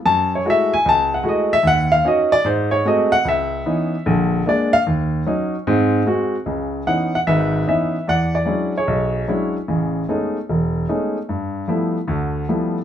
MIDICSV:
0, 0, Header, 1, 2, 480
1, 0, Start_track
1, 0, Key_signature, 4, "minor"
1, 0, Tempo, 401338
1, 66, Time_signature, 4, 2, 24, 8
1, 15360, End_track
2, 0, Start_track
2, 0, Title_t, "Grand piano"
2, 0, Program_c, 0, 0
2, 66, Note_on_c, 0, 42, 75
2, 67, Note_on_c, 0, 81, 105
2, 370, Note_off_c, 0, 81, 0
2, 422, Note_on_c, 0, 73, 72
2, 481, Note_off_c, 0, 42, 0
2, 539, Note_on_c, 0, 56, 54
2, 543, Note_on_c, 0, 57, 50
2, 545, Note_on_c, 0, 64, 51
2, 550, Note_on_c, 0, 66, 67
2, 563, Note_off_c, 0, 73, 0
2, 597, Note_on_c, 0, 76, 94
2, 872, Note_off_c, 0, 56, 0
2, 874, Note_off_c, 0, 57, 0
2, 875, Note_off_c, 0, 64, 0
2, 876, Note_off_c, 0, 76, 0
2, 878, Note_off_c, 0, 66, 0
2, 880, Note_on_c, 0, 80, 100
2, 1023, Note_on_c, 0, 37, 76
2, 1031, Note_off_c, 0, 80, 0
2, 1062, Note_on_c, 0, 81, 106
2, 1348, Note_off_c, 0, 81, 0
2, 1366, Note_on_c, 0, 78, 77
2, 1439, Note_off_c, 0, 37, 0
2, 1473, Note_on_c, 0, 57, 50
2, 1479, Note_on_c, 0, 56, 58
2, 1480, Note_on_c, 0, 64, 52
2, 1480, Note_on_c, 0, 66, 63
2, 1514, Note_off_c, 0, 78, 0
2, 1538, Note_on_c, 0, 75, 76
2, 1819, Note_off_c, 0, 57, 0
2, 1822, Note_off_c, 0, 56, 0
2, 1822, Note_off_c, 0, 64, 0
2, 1823, Note_off_c, 0, 66, 0
2, 1826, Note_off_c, 0, 75, 0
2, 1830, Note_on_c, 0, 76, 109
2, 1952, Note_on_c, 0, 39, 70
2, 1986, Note_off_c, 0, 76, 0
2, 2001, Note_on_c, 0, 78, 116
2, 2292, Note_on_c, 0, 77, 103
2, 2297, Note_off_c, 0, 78, 0
2, 2382, Note_off_c, 0, 39, 0
2, 2451, Note_on_c, 0, 61, 61
2, 2453, Note_on_c, 0, 63, 55
2, 2456, Note_off_c, 0, 77, 0
2, 2462, Note_on_c, 0, 66, 58
2, 2482, Note_on_c, 0, 75, 84
2, 2777, Note_off_c, 0, 75, 0
2, 2778, Note_on_c, 0, 74, 114
2, 2787, Note_off_c, 0, 61, 0
2, 2788, Note_off_c, 0, 63, 0
2, 2793, Note_off_c, 0, 66, 0
2, 2925, Note_on_c, 0, 44, 81
2, 2939, Note_off_c, 0, 74, 0
2, 2940, Note_on_c, 0, 72, 77
2, 3244, Note_on_c, 0, 73, 92
2, 3245, Note_off_c, 0, 72, 0
2, 3348, Note_off_c, 0, 44, 0
2, 3411, Note_off_c, 0, 73, 0
2, 3413, Note_on_c, 0, 57, 58
2, 3413, Note_on_c, 0, 60, 53
2, 3416, Note_on_c, 0, 56, 58
2, 3424, Note_on_c, 0, 66, 64
2, 3440, Note_on_c, 0, 75, 82
2, 3731, Note_on_c, 0, 78, 120
2, 3735, Note_off_c, 0, 75, 0
2, 3748, Note_off_c, 0, 57, 0
2, 3748, Note_off_c, 0, 60, 0
2, 3749, Note_off_c, 0, 56, 0
2, 3753, Note_off_c, 0, 66, 0
2, 3885, Note_on_c, 0, 37, 70
2, 3895, Note_off_c, 0, 78, 0
2, 3928, Note_on_c, 0, 76, 91
2, 4308, Note_off_c, 0, 37, 0
2, 4376, Note_on_c, 0, 52, 59
2, 4376, Note_on_c, 0, 59, 55
2, 4381, Note_on_c, 0, 63, 65
2, 4384, Note_on_c, 0, 61, 52
2, 4708, Note_off_c, 0, 52, 0
2, 4708, Note_off_c, 0, 59, 0
2, 4711, Note_off_c, 0, 63, 0
2, 4712, Note_off_c, 0, 61, 0
2, 4826, Note_off_c, 0, 76, 0
2, 4855, Note_on_c, 0, 50, 81
2, 4859, Note_on_c, 0, 34, 84
2, 5272, Note_off_c, 0, 50, 0
2, 5274, Note_off_c, 0, 34, 0
2, 5335, Note_on_c, 0, 56, 54
2, 5340, Note_on_c, 0, 58, 54
2, 5347, Note_on_c, 0, 62, 65
2, 5368, Note_on_c, 0, 74, 88
2, 5658, Note_off_c, 0, 74, 0
2, 5659, Note_on_c, 0, 77, 117
2, 5666, Note_off_c, 0, 56, 0
2, 5669, Note_off_c, 0, 58, 0
2, 5672, Note_off_c, 0, 62, 0
2, 5756, Note_off_c, 0, 77, 0
2, 5822, Note_on_c, 0, 39, 75
2, 6235, Note_off_c, 0, 39, 0
2, 6296, Note_on_c, 0, 54, 59
2, 6299, Note_on_c, 0, 61, 53
2, 6308, Note_on_c, 0, 63, 73
2, 6626, Note_off_c, 0, 54, 0
2, 6628, Note_off_c, 0, 61, 0
2, 6632, Note_off_c, 0, 63, 0
2, 6782, Note_on_c, 0, 44, 92
2, 6783, Note_on_c, 0, 60, 84
2, 7195, Note_off_c, 0, 44, 0
2, 7195, Note_off_c, 0, 60, 0
2, 7250, Note_on_c, 0, 56, 64
2, 7253, Note_on_c, 0, 60, 56
2, 7264, Note_on_c, 0, 66, 72
2, 7583, Note_off_c, 0, 56, 0
2, 7585, Note_off_c, 0, 60, 0
2, 7590, Note_off_c, 0, 66, 0
2, 7725, Note_on_c, 0, 37, 58
2, 7726, Note_on_c, 0, 49, 65
2, 8146, Note_off_c, 0, 37, 0
2, 8146, Note_off_c, 0, 49, 0
2, 8213, Note_on_c, 0, 52, 50
2, 8216, Note_on_c, 0, 61, 50
2, 8217, Note_on_c, 0, 78, 97
2, 8219, Note_on_c, 0, 59, 46
2, 8222, Note_on_c, 0, 63, 53
2, 8536, Note_off_c, 0, 78, 0
2, 8545, Note_off_c, 0, 52, 0
2, 8546, Note_off_c, 0, 61, 0
2, 8548, Note_off_c, 0, 59, 0
2, 8549, Note_off_c, 0, 63, 0
2, 8554, Note_on_c, 0, 78, 96
2, 8613, Note_off_c, 0, 78, 0
2, 8696, Note_on_c, 0, 76, 89
2, 8698, Note_on_c, 0, 44, 70
2, 8699, Note_on_c, 0, 32, 73
2, 8718, Note_on_c, 0, 71, 65
2, 9113, Note_off_c, 0, 32, 0
2, 9113, Note_off_c, 0, 44, 0
2, 9175, Note_off_c, 0, 76, 0
2, 9179, Note_on_c, 0, 61, 47
2, 9180, Note_on_c, 0, 59, 49
2, 9180, Note_on_c, 0, 63, 58
2, 9181, Note_on_c, 0, 52, 51
2, 9193, Note_on_c, 0, 76, 72
2, 9508, Note_off_c, 0, 61, 0
2, 9509, Note_off_c, 0, 52, 0
2, 9509, Note_off_c, 0, 59, 0
2, 9509, Note_off_c, 0, 63, 0
2, 9621, Note_off_c, 0, 71, 0
2, 9633, Note_off_c, 0, 76, 0
2, 9658, Note_on_c, 0, 40, 65
2, 9671, Note_on_c, 0, 74, 70
2, 9677, Note_on_c, 0, 78, 108
2, 9968, Note_off_c, 0, 74, 0
2, 9986, Note_on_c, 0, 74, 78
2, 9990, Note_off_c, 0, 78, 0
2, 10074, Note_off_c, 0, 40, 0
2, 10112, Note_on_c, 0, 54, 52
2, 10121, Note_on_c, 0, 56, 41
2, 10121, Note_on_c, 0, 61, 50
2, 10131, Note_on_c, 0, 62, 45
2, 10131, Note_on_c, 0, 64, 57
2, 10426, Note_off_c, 0, 74, 0
2, 10456, Note_off_c, 0, 54, 0
2, 10460, Note_off_c, 0, 56, 0
2, 10460, Note_off_c, 0, 61, 0
2, 10465, Note_off_c, 0, 62, 0
2, 10465, Note_off_c, 0, 64, 0
2, 10495, Note_on_c, 0, 73, 78
2, 10518, Note_on_c, 0, 68, 50
2, 10615, Note_on_c, 0, 35, 76
2, 11033, Note_off_c, 0, 35, 0
2, 11098, Note_on_c, 0, 54, 54
2, 11102, Note_on_c, 0, 56, 51
2, 11103, Note_on_c, 0, 61, 48
2, 11109, Note_on_c, 0, 62, 51
2, 11109, Note_on_c, 0, 64, 66
2, 11387, Note_off_c, 0, 73, 0
2, 11399, Note_off_c, 0, 68, 0
2, 11429, Note_off_c, 0, 54, 0
2, 11432, Note_off_c, 0, 56, 0
2, 11432, Note_off_c, 0, 61, 0
2, 11435, Note_off_c, 0, 62, 0
2, 11435, Note_off_c, 0, 64, 0
2, 11578, Note_on_c, 0, 49, 69
2, 11581, Note_on_c, 0, 33, 61
2, 11995, Note_off_c, 0, 49, 0
2, 11997, Note_off_c, 0, 33, 0
2, 12062, Note_on_c, 0, 56, 51
2, 12063, Note_on_c, 0, 59, 47
2, 12067, Note_on_c, 0, 57, 52
2, 12069, Note_on_c, 0, 61, 49
2, 12077, Note_on_c, 0, 63, 60
2, 12393, Note_off_c, 0, 56, 0
2, 12393, Note_off_c, 0, 59, 0
2, 12395, Note_off_c, 0, 57, 0
2, 12396, Note_off_c, 0, 61, 0
2, 12400, Note_off_c, 0, 63, 0
2, 12551, Note_on_c, 0, 28, 72
2, 12963, Note_off_c, 0, 28, 0
2, 13021, Note_on_c, 0, 56, 51
2, 13021, Note_on_c, 0, 57, 48
2, 13026, Note_on_c, 0, 63, 61
2, 13030, Note_on_c, 0, 61, 49
2, 13031, Note_on_c, 0, 59, 43
2, 13353, Note_off_c, 0, 56, 0
2, 13353, Note_off_c, 0, 57, 0
2, 13356, Note_off_c, 0, 63, 0
2, 13357, Note_off_c, 0, 61, 0
2, 13358, Note_off_c, 0, 59, 0
2, 13502, Note_on_c, 0, 43, 63
2, 13920, Note_off_c, 0, 43, 0
2, 13964, Note_on_c, 0, 53, 54
2, 13972, Note_on_c, 0, 55, 43
2, 13974, Note_on_c, 0, 57, 46
2, 13979, Note_on_c, 0, 64, 59
2, 13982, Note_on_c, 0, 59, 44
2, 14305, Note_off_c, 0, 53, 0
2, 14310, Note_off_c, 0, 55, 0
2, 14311, Note_off_c, 0, 57, 0
2, 14313, Note_off_c, 0, 64, 0
2, 14315, Note_off_c, 0, 59, 0
2, 14441, Note_on_c, 0, 50, 72
2, 14444, Note_on_c, 0, 38, 75
2, 14870, Note_off_c, 0, 50, 0
2, 14871, Note_off_c, 0, 38, 0
2, 14937, Note_on_c, 0, 53, 55
2, 14937, Note_on_c, 0, 55, 52
2, 14942, Note_on_c, 0, 57, 45
2, 14945, Note_on_c, 0, 59, 50
2, 14945, Note_on_c, 0, 64, 57
2, 15273, Note_off_c, 0, 53, 0
2, 15274, Note_off_c, 0, 55, 0
2, 15276, Note_off_c, 0, 57, 0
2, 15277, Note_off_c, 0, 59, 0
2, 15277, Note_off_c, 0, 64, 0
2, 15360, End_track
0, 0, End_of_file